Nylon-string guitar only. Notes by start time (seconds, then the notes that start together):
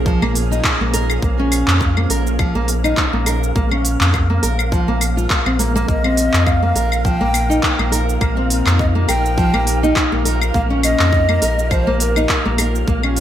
0.06 F3
0.22 A#3
0.51 D#4
0.81 A#3
0.94 A#4
1.23 A#3
1.39 C#4
1.97 A#3
2.10 A#4
2.39 F3
2.55 A#3
2.84 D#4
3.13 A#3
3.26 A#4
3.55 A#3
3.71 C#4
4.30 A#3
4.43 A#4
4.72 F3
4.88 A#3
5.17 F4
5.46 C4
5.59 A#3
5.75 A#3
5.89 A#3
6.05 C4
6.63 A#3
6.76 A#4
7.05 F3
7.21 A#3
7.50 D#4
7.79 A#3
7.92 A#4
8.21 A#3
8.37 C4
8.95 A#3
9.08 A#4
9.37 F3
9.53 A#3
9.83 D#4
10.12 A#3
10.25 A#4
10.55 A#3
10.70 C#4
11.29 A#3
11.42 A#4
11.71 F3
11.87 A#3
12.16 D#4
12.45 A#3
12.58 A#4
12.88 A#3
13.04 C#4